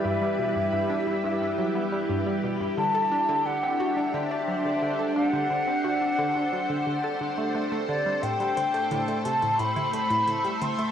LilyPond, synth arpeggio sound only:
\new Staff \with { instrumentName = "Synth arpeggio sound" } { \clef bass \time 4/4 \key d \mixolydian \tempo 4 = 88 g,16 g16 b,16 g,16 g,16 d'16 g16 g,16 g,16 fis16 b16 g16 g,16 g16 b,16 g,16 | d16 a'16 d'16 d16 d16 c'16 fis'16 d'16 d16 d'16 fis16 d16 d16 a'16 d'16 d16 | d16 c'16 fis'16 d'16 d16 d'16 fis16 d16 d16 a'16 d16 a16 a16 a16 d16 g16 | a,16 g16 c'16 a16 a,16 a16 c16 a,16 a,16 e'16 a16 a,16 a,16 g16 c'16 a16 | }